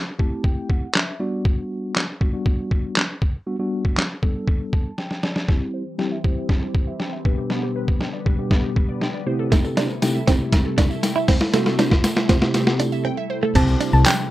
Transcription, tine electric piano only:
0.19 0.86 A3 medium
0.19 0.86 C4 medium
0.19 0.86 E4 medium
0.19 0.86 G4 loud
0.19 0.43 A5 medium
0.44 0.68 G5 medium
0.95 1.18 E5 medium
1.20 2.00 G3 medium
1.20 2.01 B3 medium
1.20 2.01 D4 medium
1.20 2.01 F#4 loud
1.20 1.43 D5 medium
2.20 2.29 G3 medium
2.20 2.29 B3 medium
2.20 2.29 D4 medium
2.20 2.29 F#4 loud
2.33 3.00 G3 medium
2.33 3.00 B3 medium
2.33 3.00 D4 medium
2.33 3.00 F#4 loud
3.46 3.55 G3 medium
3.46 3.55 B3 medium
3.46 3.55 D4 medium
3.46 3.55 F#4 medium
3.59 4.01 G3 medium
3.59 4.01 B3 medium
3.59 4.01 D4 medium
3.59 4.01 F#4 medium
4.22 4.89 G3 medium
4.22 4.89 B3 medium
4.22 4.89 D4 medium
4.22 4.89 A4 loud
4.73 4.96 A5 medium
4.98 5.22 G5 medium
5.23 5.47 D5 medium
5.48 5.82 G3 medium
5.48 5.82 C4 medium
5.48 5.82 E4 medium
5.48 5.82 G4 medium
5.98 6.15 G3 medium
5.98 6.15 C4 medium
5.98 6.16 E4 medium
5.98 6.16 G4 medium
6.24 6.91 G3 medium
6.24 6.91 C4 medium
6.24 6.91 E4 medium
6.24 6.91 G4 medium
7.25 8.06 B2 medium
7.25 8.06 G3 medium
7.25 8.06 B3 medium
7.25 8.06 D4 medium
7.25 8.06 G4 medium
8.26 8.34 B2 medium
8.26 8.34 G3 medium
8.26 8.34 B3 medium
8.26 8.34 D4 medium
8.26 8.34 G4 loud
8.38 9.05 B2 medium
8.38 9.05 G3 medium
8.38 9.05 B3 medium
8.38 9.05 D4 medium
8.38 9.05 G4 medium
9.26 9.87 C3 medium
9.26 9.87 A3 medium
9.26 9.87 C4 medium
9.26 9.87 E4 medium
9.26 9.87 G4 loud
10.02 10.19 C3 medium
10.02 10.19 A3 medium
10.02 10.19 C4 medium
10.02 10.19 E4 medium
10.02 10.19 G4 loud
10.27 10.94 C3 medium
10.27 10.94 A3 medium
10.27 10.94 C4 medium
10.27 10.94 E4 medium
10.27 10.94 G4 loud
11.53 12.03 C3 medium
11.53 12.04 A3 medium
11.53 12.04 C4 medium
11.53 12.04 E4 medium
11.53 12.04 F#4 loud
12.29 12.37 C3 medium
12.29 12.38 A3 medium
12.29 12.38 C4 medium
12.29 12.38 E4 medium
12.29 12.38 G4 loud
12.41 13.08 C3 medium
12.41 13.09 A3 medium
12.41 13.09 C4 medium
12.41 13.09 E4 medium
12.41 13.09 G4 loud
13.55 14.05 G3 medium
13.55 14.05 C4 medium
13.55 14.05 E4 medium
13.55 14.05 G4 medium
13.55 14.05 C5 medium

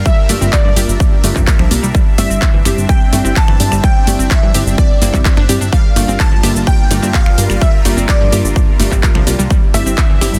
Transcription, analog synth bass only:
0.29 0.39 G1 medium
0.41 0.50 G1 medium
0.65 0.74 G2 medium
0.77 0.86 G1 medium
0.88 0.98 G1 medium
1.24 1.33 G1 medium
1.36 1.45 G1 medium
1.59 1.69 C2 medium
1.71 1.80 C2 loud
1.83 1.92 C2 medium
2.18 2.28 G1 loud
2.30 2.39 G1 medium
2.54 2.63 G1 medium
2.66 2.75 G1 medium
2.77 2.87 G1 medium
3.13 3.22 G1 loud
3.25 3.34 G1 medium
3.48 3.58 G1 medium
3.60 3.69 G2 loud
3.72 3.81 G1 medium
4.07 4.17 G1 medium
4.19 4.28 G1 medium
4.43 4.52 G2 medium
4.55 4.64 G1 medium
4.66 4.76 G1 medium
5.02 5.11 G1 medium
5.14 5.23 G1 medium
5.37 5.47 G1 medium
5.49 5.58 G2 loud
5.61 5.70 G1 medium
5.96 6.06 G1 medium
6.08 6.17 G1 medium
6.32 6.41 G1 medium
6.43 6.53 G1 loud
6.55 6.65 G1 medium
6.91 7.00 G1 medium
7.03 7.12 G1 medium
7.26 7.35 G1 medium
7.38 7.47 G2 loud
7.50 7.59 G1 medium
7.85 7.95 G1 medium
7.97 8.06 G1 medium
8.21 8.30 G2 medium
8.32 8.42 G1 loud
8.44 8.54 G1 medium
8.80 8.89 G1 loud
8.92 9.01 G1 medium
9.15 9.24 C2 medium
9.27 9.36 C2 loud
9.39 9.48 C2 medium
9.74 9.84 G1 medium
9.86 9.95 G1 medium
10.10 10.19 G1 medium
10.21 10.31 G1 medium
10.33 10.39 G1 medium

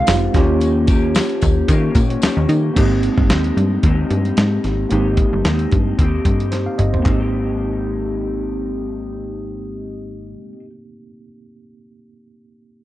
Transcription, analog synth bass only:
0.08 0.29 F1 medium
0.34 1.20 D#2 loud
1.43 1.64 D#2 medium
1.68 1.90 D#3 loud
1.95 2.17 A#2 medium
2.22 2.28 D#2 soft
2.37 2.47 D#2 medium
2.49 2.71 D#3 loud
2.76 3.10 G#1 loud
3.18 3.32 G1 medium
3.30 3.52 D#2 medium
3.57 3.78 G2 medium
3.83 4.05 D#2 loud
4.11 4.32 G2 medium
4.38 4.59 G#2 loud
4.64 4.86 G#1 medium
4.92 5.25 G#1 loud
5.33 5.43 G1 medium
5.46 5.67 D#2 medium
5.72 5.94 G2 medium
5.98 6.20 D#2 medium
6.25 6.68 G2 medium
6.79 7.01 G1 medium
7.05 10.36 G#1 medium

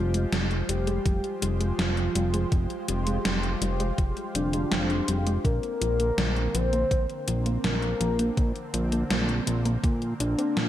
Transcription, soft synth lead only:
0.00 0.54 F4 loud
0.69 1.64 G4 loud
1.79 2.74 F4 loud
4.35 5.30 D4 loud
5.45 6.56 A#4 loud
6.55 7.50 C5 loud
7.64 8.59 A#4 loud
10.20 10.69 D4 loud

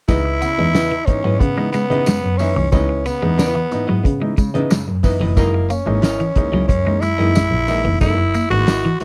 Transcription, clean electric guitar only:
0.25 muted clean electric guitar stroke soft
0.42 0.52 B3 medium
0.59 0.69 G#3 medium
0.91 1.02 E3 medium
1.08 muted clean electric guitar stroke soft
1.24 1.35 F#3 medium
1.41 muted clean electric guitar stroke soft
1.58 1.68 G#3 medium
1.74 1.84 G#3 medium
2.07 2.17 G#3 medium
2.40 muted clean electric guitar stroke soft
2.56 2.67 E3 medium
2.89 muted clean electric guitar stroke soft
3.06 3.16 B3 medium
3.22 3.33 G#3 medium
3.55 3.66 E3 medium
3.72 muted clean electric guitar stroke soft
3.89 3.99 F#3 medium
4.05 muted clean electric guitar stroke soft
4.22 4.32 G#3 medium
4.38 4.49 G#3 medium
4.71 4.82 G#3 medium
5.05 muted clean electric guitar stroke soft
5.21 5.31 E3 medium
5.54 muted clean electric guitar stroke soft
5.70 5.81 A#3 medium
5.87 5.98 G#3 medium
6.20 6.31 E3 medium
6.37 muted clean electric guitar stroke soft
6.53 6.64 F#3 medium
6.70 muted clean electric guitar stroke soft
6.87 6.97 G#3 medium
7.03 7.13 G#3 medium
7.36 7.46 G#3 medium
7.69 muted clean electric guitar stroke soft
7.85 7.96 E3 medium
8.18 muted clean electric guitar stroke soft
8.34 8.45 A#3 medium
8.51 8.62 G#3 medium
8.85 8.95 E3 medium

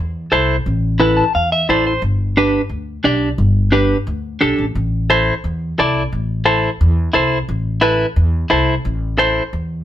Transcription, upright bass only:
0.00 0.25 E2 medium
0.32 0.59 C2 medium
0.66 1.20 A1 medium
1.35 1.62 E2 medium
1.69 1.96 A1 medium
2.02 2.57 G1 loud
2.69 2.97 D2 medium
3.04 3.31 B1 medium
3.38 3.93 G1 loud
4.07 4.34 D2 medium
4.41 4.56 B1 medium
4.58 4.74 A1 medium
4.75 5.30 A1 medium
5.44 5.71 E2 medium
5.79 6.05 C2 medium
6.12 6.67 A1 medium
6.81 7.08 E2 loud
7.15 7.41 C2 medium
7.49 8.03 A1 loud
8.16 8.43 E2 loud
8.51 8.78 C2 medium
8.85 9.39 A1 medium
9.53 9.80 E2 medium

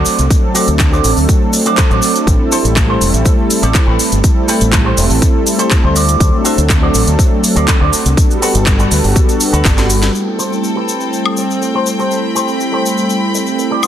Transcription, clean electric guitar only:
0.00 0.24 F#4 medium
0.00 0.25 C5 medium
0.00 0.25 D5 medium
0.55 0.68 F#4 loud
0.55 0.68 C5 loud
0.55 0.68 D5 loud
0.80 muted clean electric guitar stroke soft
0.92 1.11 F#4 medium
0.92 1.11 C5 medium
0.92 1.11 D5 medium
1.29 muted clean electric guitar stroke soft
1.66 1.78 F#4 loud
1.66 1.78 C5 medium
1.66 1.79 D5 loud
1.90 2.21 F#4 medium
1.90 2.21 C5 medium
1.90 2.22 D5 medium
2.51 2.64 G4 loud
2.51 2.65 A4 loud
2.51 2.65 C5 loud
2.76 muted clean electric guitar stroke soft
2.88 3.07 G4 medium
2.88 3.07 A4 medium
2.88 3.08 C5 medium
3.25 muted clean electric guitar stroke soft
3.62 3.74 G4 loud
3.62 3.75 A4 medium
3.62 3.75 D5 loud
3.87 4.18 G4 medium
3.87 4.18 A4 medium
3.87 4.18 B4 medium
4.48 4.61 G4 loud
4.48 4.61 A4 loud
4.48 4.62 B4 loud
4.72 muted clean electric guitar stroke soft
4.85 5.04 G4 medium
4.85 5.04 A4 medium
4.85 5.04 C5 medium
5.22 muted clean electric guitar stroke soft
5.58 5.71 G4 loud
5.58 5.71 A4 medium
5.58 5.72 C5 loud
5.83 5.95 G4 medium
5.83 5.96 A4 medium
5.83 5.95 C5 medium
5.95 6.36 F#4 medium
5.95 6.36 C5 medium
5.95 6.36 D5 loud
6.44 6.58 F#4 loud
6.44 6.58 C5 loud
6.44 6.58 E5 loud
6.69 muted clean electric guitar stroke soft
6.82 7.01 F#4 medium
6.82 7.01 C5 medium
6.82 7.01 D5 medium
7.18 muted clean electric guitar stroke soft
7.56 7.68 F#4 loud
7.56 7.68 C5 loud
7.56 7.69 D5 loud
7.80 8.11 F#4 medium
7.80 8.12 C5 medium
7.80 8.12 D5 medium
8.42 8.55 F#4 loud
8.42 8.55 A4 loud
8.42 8.55 B4 loud
8.67 muted clean electric guitar stroke soft
8.79 8.97 F#4 medium
8.79 8.98 A4 medium
8.79 8.98 B4 medium
9.16 muted clean electric guitar stroke soft
9.53 9.65 F#4 loud
9.53 9.65 A4 medium
9.53 9.65 B4 loud
9.77 10.08 F#4 medium
9.77 10.08 A4 medium
9.77 10.09 B4 medium
10.38 10.51 G4 medium
10.38 10.52 A4 medium
10.38 10.52 C5 loud
10.63 muted clean electric guitar stroke soft
10.76 11.07 G4 medium
10.76 11.07 A4 medium
10.76 11.07 B4 medium
11.37 muted clean electric guitar stroke soft
11.62 muted clean electric guitar stroke soft
11.74 11.86 G4 medium
11.74 11.87 A4 medium
11.74 11.87 C5 medium
11.99 12.17 G4 medium
11.99 12.18 A4 medium
11.99 12.18 C5 loud
12.35 12.48 G4 loud
12.35 12.48 A4 medium
12.35 12.49 C5 loud
12.60 muted clean electric guitar stroke soft
12.73 13.03 G4 medium
12.73 13.04 A4 medium
12.73 13.04 C5 medium
13.33 muted clean electric guitar stroke soft
13.58 muted clean electric guitar stroke soft
13.71 13.82 G4 medium
13.71 13.83 A4 medium
13.71 13.83 D5 medium
13.82 13.87 D4 medium
13.82 13.87 F#4 medium
13.82 13.87 C5 medium

